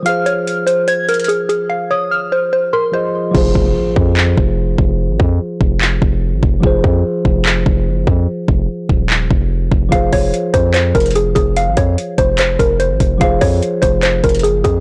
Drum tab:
CC |--------------------------------|--------------------------------|x-------------------------------|--------------------------------|
HH |x---x---x---x---x---xxxxx---x---|--------------------------------|--------------------------------|--------------------------------|
CP |--------------------------------|--------------------------------|----------------x---------------|----------------x---------------|
BD |--------------------------------|--------------------------------|o---o-------o-------o-------o---|----o-------o-------o-------o---|

CC |--------------------------------|--------------------------------|--------------------------------|--------------------------------|
HH |--------------------------------|--------------------------------|x---o---x---x---x---xxxxx---x---|x---x---x---x---x---x---x---x---|
CP |----------------x---------------|----------------x---------------|----------------x---------------|----------------x---------------|
BD |o---o-------o-------o-------o---|----o-------o-------o-------o---|o---o-------o-------o-------o---|----o-------o-------o-------o---|

CC |--------------------------------|
HH |x---o---x---x---x---xxxxx---x---|
CP |----------------x---------------|
BD |o---o-------o-------o-------o---|